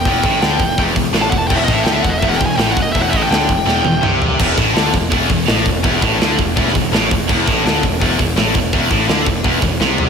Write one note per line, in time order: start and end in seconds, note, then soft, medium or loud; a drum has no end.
0.00 0.83 G5 medium
0.05 0.22 E1 medium
0.05 0.23 E2 loud
0.05 kick loud
0.05 open hi-hat medium
0.23 0.40 A1 medium
0.23 0.42 A2 loud
0.23 kick loud
0.23 open hi-hat medium
0.41 0.58 D2 medium
0.41 0.59 D3 medium
0.41 snare loud
0.41 open hi-hat medium
0.59 0.76 E1 medium
0.59 0.74 E2 medium
0.59 kick loud
0.59 open hi-hat medium
0.78 0.95 E1 medium
0.78 0.94 E2 loud
0.78 kick loud
0.78 open hi-hat medium
0.95 1.12 E1 medium
0.95 1.10 E2 medium
0.95 kick medium
0.95 open hi-hat medium
1.13 1.30 A1 loud
1.13 1.31 A2 loud
1.13 snare loud
1.13 open hi-hat medium
1.22 1.30 A5 medium
1.30 1.49 E1 medium
1.30 1.47 E2 medium
1.30 1.38 F#5 medium
1.30 kick loud
1.30 open hi-hat medium
1.38 1.47 A5 loud
1.47 1.67 E1 medium
1.47 1.67 E2 loud
1.47 1.57 G5 loud
1.47 kick loud
1.47 crash loud
1.56 1.64 E5 medium
1.64 1.84 A1 medium
1.64 1.85 A2 loud
1.64 1.74 D#5 medium
1.64 kick loud
1.69 open hi-hat medium
1.74 1.84 E5 loud
1.83 2.02 D2 medium
1.83 2.04 D3 loud
1.83 1.93 G5 loud
1.83 snare loud
1.83 open hi-hat medium
1.92 2.02 E5 medium
2.02 2.21 E1 medium
2.02 2.19 E2 medium
2.02 2.12 F#5 loud
2.02 kick medium
2.02 open hi-hat medium
2.10 2.18 D#5 medium
2.19 2.40 E1 loud
2.19 2.39 E2 loud
2.19 2.29 E5 medium
2.19 kick loud
2.19 open hi-hat medium
2.28 2.37 F#5 medium
2.33 snare soft
2.37 2.57 E1 medium
2.37 2.55 E2 medium
2.37 2.45 G5 loud
2.37 kick loud
2.42 2.56 G#5 loud
2.42 open hi-hat medium
2.56 2.75 A1 medium
2.56 2.76 A2 medium
2.56 2.71 G5 medium
2.56 snare loud
2.56 open hi-hat medium
2.72 2.82 F#5 loud
2.77 2.94 E1 medium
2.77 2.92 E2 medium
2.77 kick loud
2.77 open hi-hat medium
2.82 2.92 D#5 medium
2.92 3.12 E1 medium
2.92 3.13 E2 loud
2.92 3.02 E5 medium
2.92 kick loud
2.92 open hi-hat medium
3.02 3.10 F#5 loud
3.11 3.29 A1 medium
3.11 3.30 A2 loud
3.11 3.17 E5 loud
3.11 kick loud
3.11 open hi-hat medium
3.17 3.23 D#5 medium
3.23 4.10 G5 loud
3.29 3.47 D2 medium
3.29 3.48 D3 loud
3.29 snare loud
3.29 open hi-hat medium
3.48 3.64 E1 medium
3.48 3.63 E2 medium
3.48 kick medium
3.48 open hi-hat medium
3.65 3.83 E1 medium
3.65 3.83 E2 loud
3.65 snare medium
3.84 4.01 E1 medium
3.84 3.99 E2 medium
3.84 high tom medium
4.01 4.37 C2 medium
4.01 4.38 C3 medium
4.01 mid tom loud
4.22 floor tom loud
4.39 4.56 E1 medium
4.39 4.57 E2 loud
4.39 kick loud
4.39 crash loud
4.58 4.73 A1 medium
4.58 4.74 A2 loud
4.58 kick loud
4.58 open hi-hat medium
4.74 4.92 D2 medium
4.74 4.93 D3 medium
4.74 snare loud
4.74 open hi-hat medium
4.94 5.11 E1 medium
4.94 5.08 E2 medium
4.94 kick medium
4.94 open hi-hat medium
5.11 5.28 E1 loud
5.11 5.29 E2 loud
5.11 kick loud
5.11 open hi-hat medium
5.29 5.46 E1 medium
5.29 5.45 E2 medium
5.29 kick medium
5.29 open hi-hat medium
5.48 5.64 A1 medium
5.48 5.65 A2 loud
5.48 snare loud
5.48 open hi-hat medium
5.65 5.83 E1 medium
5.65 5.80 E2 medium
5.65 kick medium
5.65 open hi-hat medium
5.83 6.01 E1 medium
5.83 6.01 E2 loud
5.83 kick loud
5.83 open hi-hat medium
6.01 6.18 A1 medium
6.01 6.19 A2 loud
6.01 kick loud
6.01 open hi-hat medium
6.19 6.36 D2 medium
6.19 6.37 D3 medium
6.19 snare loud
6.19 open hi-hat medium
6.38 6.55 E1 medium
6.38 6.53 E2 medium
6.38 kick medium
6.38 open hi-hat medium
6.56 6.73 E1 medium
6.56 6.73 E2 loud
6.56 kick loud
6.56 open hi-hat medium
6.68 snare soft
6.74 6.92 E1 medium
6.74 6.88 E2 medium
6.74 kick loud
6.74 open hi-hat medium
6.92 7.09 A1 loud
6.92 7.10 A2 loud
6.92 snare loud
6.92 open hi-hat medium
7.11 7.28 E1 medium
7.11 7.25 E2 medium
7.11 kick loud
7.11 open hi-hat medium
7.29 7.46 E1 medium
7.29 7.46 E2 loud
7.29 kick loud
7.29 crash loud
7.47 7.64 A1 medium
7.47 7.64 A2 medium
7.47 kick loud
7.47 open hi-hat medium
7.65 7.81 D2 loud
7.65 7.82 D3 loud
7.65 snare loud
7.65 open hi-hat medium
7.83 7.99 E1 medium
7.83 7.97 E2 medium
7.83 kick medium
7.83 open hi-hat medium
8.00 8.18 E1 medium
8.00 8.18 E2 loud
8.00 kick medium
8.00 open hi-hat medium
8.19 8.35 E1 medium
8.19 8.33 E2 medium
8.19 kick loud
8.19 open hi-hat medium
8.35 8.53 A1 loud
8.35 8.54 A2 loud
8.35 snare loud
8.35 open hi-hat loud
8.54 8.71 E1 medium
8.54 8.69 E2 medium
8.54 kick loud
8.54 open hi-hat medium
8.73 8.89 E1 medium
8.73 8.90 E2 loud
8.73 kick loud
8.73 open hi-hat medium
8.89 9.07 A1 medium
8.89 9.07 A2 loud
8.89 kick loud
8.89 open hi-hat medium
9.08 9.25 D2 medium
9.08 9.26 D3 medium
9.08 snare loud
9.08 open hi-hat medium
9.25 9.43 E1 medium
9.25 9.40 E2 medium
9.25 kick loud
9.25 open hi-hat medium
9.44 9.61 E1 medium
9.44 9.60 E2 loud
9.44 kick medium
9.44 open hi-hat medium
9.61 9.79 E1 medium
9.61 9.76 E2 medium
9.61 kick loud
9.61 open hi-hat medium
9.80 10.09 C2 loud
9.80 10.09 C3 loud
9.80 snare medium
9.98 floor tom loud